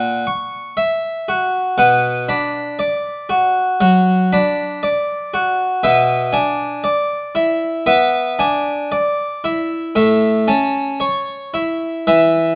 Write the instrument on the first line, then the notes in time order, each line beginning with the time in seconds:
harpsichord
Already playing: A#2 F#5
0.27 C#6
0.77 E5
1.28 F#4
1.78 B2 F#5
2.28 D4 B5
2.79 D5
3.29 F#4
3.81 F#3 F#5
4.33 D4 B5
4.83 D5
5.34 F#4
5.83 B2 E5
6.33 D4 G#5
6.84 D5
7.35 E4
7.86 B3 E5
8.39 D4 G#5
8.92 D5
9.44 E4
9.95 A2 E5
10.48 C#4 A5
11.00 C#5
11.54 E4
12.07 E3 E5